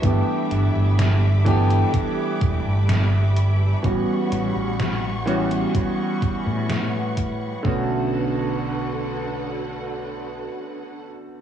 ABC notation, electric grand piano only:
X:1
M:4/4
L:1/8
Q:1/4=63
K:Bm
V:1 name="Electric grand piano"
[E,A,B,DG]3 [E,A,B,DG]4- [E,A,B,DG] | [E,G,B,CF]3 [E,G,B,CF]4- [E,G,B,CF] | [D,A,B,CF]8 |]